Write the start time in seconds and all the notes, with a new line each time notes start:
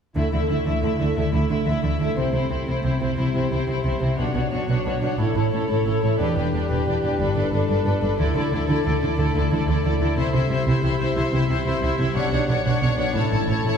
0.15 D2 D3 A3 E4 E5
0.32 D2 D3 A3 E4 E5
0.49 D2 D3 A3 E4 E5
0.66 D2 D3 A3 E4 E5
0.83 D2 D3 A3 E4 E5
0.99 D2 D3 A3 E4 E5
1.16 D2 D3 A3 D4 E4 E5
1.33 D2 D3 A3 E4 E5
1.49 D2 D3 A3 E4 E5
1.66 D2 D3 A3 E4 E5
1.83 D2 D3 A3 E4 E5
2.00 D2 D3 A3 E4 E5
2.16 C2 C3 C4 E4 C5
2.33 C2 C3 C4 E4 C5
2.50 C2 C3 C4 E4 C5
2.66 C2 C3 C4 E4 C5
2.83 C2 C3 C4 E4 C5
3.01 C2 C3 C4 E4 C5
3.17 C2 C3 G3 C4 E4 C5
3.34 C2 C3 C4 E4 C5
3.51 C2 C3 C4 E4 C5
3.67 C2 C3 C4 E4 C5
3.84 C2 C3 C4 E4 C5
4.00 C2 C3 C4 E4 C5
4.17 B1 B2 D4 F#4 C#5
4.34 B1 B2 D4 F#4 C#5
4.51 B1 B2 D4 F#4 C#5
4.68 B1 B2 D4 F#4 C#5
4.85 B1 B2 D4 F#4 C#5
5.02 B1 B2 D4 F#4 C#5
5.18 A1 A2 E4 A4 C#5
5.35 A1 A2 E4 A4 C#5
5.52 A1 A2 E4 A4 C#5
5.69 A1 A2 E4 A4 C#5
5.86 A1 A2 E4 A4 C#5
6.02 A1 A2 E4 A4 C#5
6.19 E1 E2 D4 G4 B4
6.36 E1 E2 D4 G4 B4
6.52 E1 E2 D4 G4 B4
6.70 E1 E2 D4 G4 B4
6.86 E1 E2 D4 G4 B4
7.03 E1 E2 D4 G4 B4
7.19 G1 G2 D4 A4 B4
7.36 G1 G2 D4 A4 B4
7.53 G1 G2 D4 A4 B4
7.69 G1 G2 D4 A4 B4
7.85 G1 G2 D4 A4 B4
8.01 G1 G2 D4 A4 B4
8.18 D2 D3 E4 A4 D5
8.35 D2 D3 D4 E4 A4 D5
8.52 D2 D3 E4 A4 D5
8.68 D2 D3 E4 A4 D5
8.85 D2 D3 E4 A4 D5
9.01 D2 D3 D4 E4 A4 D5
9.18 D2 D3 A3 E4 A4 D5
9.35 D2 D3 D4 E4 A4 D5
9.51 D2 D3 E4 A4 D5
9.67 D2 D3 E4 A4 D5
9.84 D2 D3 E4 A4 D5
10.00 D2 D3 D4 E4 A4 D5
10.17 C2 C3 E4 C5 E5
10.33 C2 C3 E4 C5 E5
10.50 C2 C3 G3 E4 C5 E5
10.66 C2 C3 E4 C5 E5
10.82 C2 C3 E4 C5 E5
10.99 C2 C3 G3 E4 C5 E5
11.15 C2 C3 E4 C5 E5
11.32 C2 C3 G3 E4 C5 E5
11.49 C2 C3 E4 C5 E5
11.65 C2 C3 E4 C5 E5
11.81 C2 C3 E4 C5 E5
11.98 C2 C3 G3 E4 C5 E5
12.14 B1 B2 D4 C#5 F#5
12.32 B1 B2 D4 C#5 F#5
12.48 B1 B2 D4 F#4 C#5 F#5
12.65 B1 B2 D4 C#5 F#5
12.82 B1 B2 D4 F#4 C#5 F#5
12.98 B1 B2 D4 C#5 F#5
13.15 A1 A2 E4 C#5 A5
13.31 A1 A2 E4 C#5 A5
13.48 A1 A2 E4 A4 C#5 A5
13.65 A1 A2 E4 C#5 A5